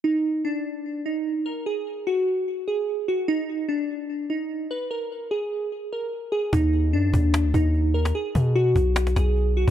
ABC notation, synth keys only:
X:1
M:4/4
L:1/8
Q:1/4=148
K:Cblyd
V:1 name="Synth keys"
E2 =D3 E2 B | A2 G3 A2 G | E2 =D3 E2 c | B2 A3 B2 A |
E2 =D3 E2 B | A2 ^F3 A2 F |]